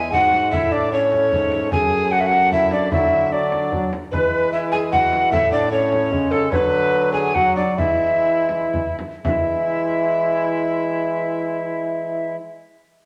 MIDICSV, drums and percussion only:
0, 0, Header, 1, 2, 480
1, 0, Start_track
1, 0, Tempo, 399467
1, 625, Time_signature, 3, 2, 24, 8
1, 7826, Tempo, 423729
1, 9266, Tempo, 473934
1, 10226, Tempo, 516796
1, 10706, Tempo, 531915
1, 14140, End_track
2, 0, Start_track
2, 0, Title_t, "Frame drum"
2, 145, Note_on_c, 9, 64, 57
2, 265, Note_off_c, 9, 64, 0
2, 382, Note_on_c, 9, 64, 59
2, 502, Note_off_c, 9, 64, 0
2, 631, Note_on_c, 9, 64, 81
2, 751, Note_off_c, 9, 64, 0
2, 1345, Note_on_c, 9, 64, 53
2, 1465, Note_off_c, 9, 64, 0
2, 1586, Note_on_c, 9, 64, 55
2, 1706, Note_off_c, 9, 64, 0
2, 1824, Note_on_c, 9, 64, 63
2, 1944, Note_off_c, 9, 64, 0
2, 2066, Note_on_c, 9, 64, 83
2, 2186, Note_off_c, 9, 64, 0
2, 2782, Note_on_c, 9, 64, 57
2, 2902, Note_off_c, 9, 64, 0
2, 3024, Note_on_c, 9, 64, 56
2, 3144, Note_off_c, 9, 64, 0
2, 3258, Note_on_c, 9, 64, 55
2, 3378, Note_off_c, 9, 64, 0
2, 3505, Note_on_c, 9, 64, 83
2, 3625, Note_off_c, 9, 64, 0
2, 4232, Note_on_c, 9, 64, 53
2, 4352, Note_off_c, 9, 64, 0
2, 4469, Note_on_c, 9, 64, 52
2, 4589, Note_off_c, 9, 64, 0
2, 4720, Note_on_c, 9, 64, 58
2, 4840, Note_off_c, 9, 64, 0
2, 4960, Note_on_c, 9, 64, 70
2, 5080, Note_off_c, 9, 64, 0
2, 5679, Note_on_c, 9, 64, 50
2, 5799, Note_off_c, 9, 64, 0
2, 5924, Note_on_c, 9, 64, 61
2, 6044, Note_off_c, 9, 64, 0
2, 6162, Note_on_c, 9, 64, 60
2, 6282, Note_off_c, 9, 64, 0
2, 6399, Note_on_c, 9, 64, 79
2, 6519, Note_off_c, 9, 64, 0
2, 7119, Note_on_c, 9, 64, 52
2, 7239, Note_off_c, 9, 64, 0
2, 7358, Note_on_c, 9, 64, 55
2, 7478, Note_off_c, 9, 64, 0
2, 7591, Note_on_c, 9, 64, 57
2, 7711, Note_off_c, 9, 64, 0
2, 7832, Note_on_c, 9, 64, 76
2, 7946, Note_off_c, 9, 64, 0
2, 8522, Note_on_c, 9, 64, 56
2, 8635, Note_off_c, 9, 64, 0
2, 8774, Note_on_c, 9, 64, 57
2, 8887, Note_off_c, 9, 64, 0
2, 9025, Note_on_c, 9, 64, 58
2, 9138, Note_off_c, 9, 64, 0
2, 9265, Note_on_c, 9, 64, 77
2, 9366, Note_off_c, 9, 64, 0
2, 9980, Note_on_c, 9, 64, 51
2, 10081, Note_off_c, 9, 64, 0
2, 10231, Note_on_c, 9, 64, 61
2, 10324, Note_off_c, 9, 64, 0
2, 10463, Note_on_c, 9, 64, 59
2, 10556, Note_off_c, 9, 64, 0
2, 10704, Note_on_c, 9, 64, 78
2, 10795, Note_off_c, 9, 64, 0
2, 14140, End_track
0, 0, End_of_file